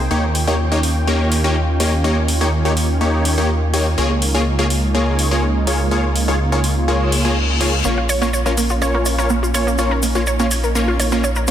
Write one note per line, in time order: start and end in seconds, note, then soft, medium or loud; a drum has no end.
0.00 3.94 G5 medium
0.11 3.96 D#2 medium
0.11 3.94 D#3 medium
0.11 0.23 A#3 medium
0.11 11.51 A#3 medium
0.11 3.94 C#4 medium
0.11 0.23 D#4 medium
0.11 3.94 F4 medium
0.11 0.23 G4 medium
0.11 0.23 C#5 loud
0.35 open hi-hat loud
0.47 0.55 A#3 medium
0.47 0.55 D#4 medium
0.47 0.55 G4 medium
0.47 0.55 C#5 medium
0.72 0.79 A#3 medium
0.72 0.79 D#4 medium
0.72 0.79 G4 medium
0.72 0.79 C#5 medium
0.83 open hi-hat medium
1.07 1.41 A#3 medium
1.07 1.41 D#4 medium
1.07 1.41 G4 medium
1.07 1.41 C#5 medium
1.32 open hi-hat medium
1.44 1.56 A#3 medium
1.44 1.56 D#4 medium
1.44 1.56 G4 medium
1.44 1.56 C#5 medium
1.80 1.93 A#3 medium
1.80 1.93 D#4 medium
1.80 1.93 G4 medium
1.80 1.93 C#5 loud
1.80 open hi-hat loud
2.04 2.17 A#3 medium
2.04 2.17 D#4 medium
2.04 2.17 G4 medium
2.04 2.17 C#5 medium
2.28 open hi-hat medium
2.41 2.48 A#3 medium
2.41 2.48 D#4 medium
2.41 2.48 G4 medium
2.41 2.48 C#5 loud
2.65 2.73 A#3 medium
2.65 2.73 D#4 medium
2.65 2.73 G4 medium
2.65 2.73 C#5 medium
2.77 open hi-hat medium
3.01 3.35 A#3 medium
3.01 3.35 D#4 medium
3.01 3.35 G4 medium
3.01 3.35 C#5 medium
3.25 open hi-hat medium
3.38 3.50 A#3 medium
3.38 3.50 D#4 medium
3.38 3.50 G4 medium
3.38 3.50 C#5 medium
3.74 3.86 A#3 medium
3.74 3.86 D#4 medium
3.74 3.86 G4 medium
3.74 3.86 C#5 loud
3.74 open hi-hat medium
3.98 7.83 C#2 medium
3.98 7.81 C#3 medium
3.98 7.81 G#3 medium
3.98 4.11 A#3 medium
3.98 7.81 D#4 medium
3.98 4.11 F4 medium
3.98 9.74 F4 medium
3.98 4.11 G#4 medium
3.98 4.11 C#5 loud
4.22 open hi-hat medium
4.35 4.42 A#3 medium
4.35 4.42 F4 medium
4.35 4.42 G#4 medium
4.35 4.42 C#5 medium
4.59 4.66 A#3 medium
4.59 4.66 F4 medium
4.59 4.66 G#4 medium
4.59 4.66 C#5 loud
4.70 open hi-hat medium
4.95 5.28 A#3 medium
4.95 5.28 F4 medium
4.95 5.28 G#4 medium
4.95 5.28 C#5 medium
5.19 open hi-hat medium
5.31 5.43 A#3 medium
5.31 5.43 F4 medium
5.31 5.43 G#4 medium
5.31 5.43 C#5 medium
5.67 5.80 A#3 medium
5.67 5.80 F4 medium
5.67 5.80 G#4 medium
5.67 5.80 C#5 loud
5.67 open hi-hat medium
5.91 6.04 A#3 medium
5.91 6.04 F4 medium
5.91 6.04 G#4 medium
5.91 6.04 C#5 loud
6.16 open hi-hat medium
6.28 6.36 A#3 medium
6.28 6.36 F4 medium
6.28 6.36 G#4 medium
6.28 6.36 C#5 loud
6.52 6.60 A#3 medium
6.52 6.60 F4 medium
6.52 6.60 G#4 medium
6.52 6.60 C#5 medium
6.64 open hi-hat loud
6.88 7.22 A#3 medium
6.88 7.22 F4 medium
6.88 7.22 G#4 medium
6.88 7.22 C#5 medium
6.88 reverse cymbal medium
7.12 open hi-hat medium
7.25 7.37 A#3 medium
7.25 7.37 F4 medium
7.25 7.37 G#4 medium
7.25 7.37 C#5 medium
7.61 7.73 A#3 medium
7.61 7.73 F4 medium
7.61 7.73 G#4 medium
7.61 7.73 C#5 loud
7.61 open hi-hat medium
7.84 11.51 A#1 medium
7.84 7.98 A#3 medium
7.84 7.89 A#3 medium
7.84 11.51 C#4 medium
7.84 7.98 C#4 medium
7.84 7.98 F4 medium
7.84 7.98 C#5 loud
7.84 shaker soft
7.98 8.08 F4 medium
8.09 8.20 C#5 medium
8.09 open hi-hat medium
8.09 shaker medium
8.22 8.29 A#3 medium
8.22 8.29 A#3 loud
8.22 8.29 C#4 medium
8.22 8.29 F4 medium
8.22 8.29 C#5 medium
8.22 shaker soft
8.33 8.38 C#5 medium
8.33 shaker soft
8.46 8.53 A#3 medium
8.46 8.53 C#4 medium
8.46 8.53 F4 medium
8.46 8.53 A#4 medium
8.46 8.53 C#5 medium
8.46 shaker soft
8.57 8.62 A#3 medium
8.57 open hi-hat loud
8.57 shaker medium
8.69 8.80 F4 medium
8.69 shaker soft
8.82 9.15 A#3 medium
8.82 9.15 C#4 medium
8.82 9.15 F4 medium
8.82 9.15 C#5 medium
8.82 8.93 C#5 loud
8.82 shaker soft
8.94 9.01 A#3 loud
9.06 9.10 C#5 medium
9.06 open hi-hat loud
9.06 shaker medium
9.18 9.30 A#3 medium
9.18 9.30 C#4 medium
9.18 9.30 F4 medium
9.18 9.25 A#4 medium
9.18 9.30 C#5 medium
9.18 shaker soft
9.29 9.35 A#3 medium
9.29 shaker soft
9.43 9.53 F4 medium
9.43 shaker soft
9.54 9.67 A#3 medium
9.54 9.67 C#4 medium
9.54 9.67 F4 medium
9.54 9.67 C#5 loud
9.54 9.65 C#5 loud
9.54 open hi-hat loud
9.54 shaker medium
9.67 9.74 A#3 loud
9.67 shaker soft
9.78 9.91 A#3 medium
9.78 9.91 C#4 medium
9.78 11.51 D#4 medium
9.78 9.91 F4 medium
9.78 9.91 C#5 loud
9.78 9.83 C#5 medium
9.78 shaker soft
9.91 9.98 A#4 medium
10.03 10.07 A#3 medium
10.03 open hi-hat loud
10.03 shaker loud
10.15 10.23 A#3 medium
10.15 10.23 C#4 medium
10.15 10.23 F4 medium
10.15 10.26 F4 medium
10.15 10.23 C#5 medium
10.15 shaker soft
10.27 10.38 C#5 medium
10.27 shaker medium
10.39 10.47 A#3 medium
10.39 10.46 A#3 medium
10.39 10.47 C#4 medium
10.39 10.47 F4 medium
10.39 10.47 C#5 medium
10.39 shaker soft
10.51 10.56 C#5 medium
10.51 open hi-hat loud
10.51 shaker loud
10.64 10.70 A#4 medium
10.64 shaker soft
10.75 11.09 A#3 medium
10.75 10.80 A#3 medium
10.75 11.09 C#4 medium
10.75 11.09 F4 medium
10.75 11.09 C#5 medium
10.75 shaker medium
10.88 10.98 F4 medium
11.00 11.11 C#5 medium
11.00 open hi-hat loud
11.00 shaker medium
11.12 11.24 A#3 medium
11.12 11.19 A#3 loud
11.12 11.24 C#4 medium
11.12 11.24 F4 medium
11.12 11.24 C#5 medium
11.12 shaker soft
11.24 11.28 C#5 medium
11.24 shaker soft
11.35 11.43 A#4 medium
11.35 shaker soft
11.47 11.51 A#3 loud
11.47 11.51 C#4 medium
11.47 11.51 F4 medium
11.47 11.51 C#5 loud
11.47 shaker medium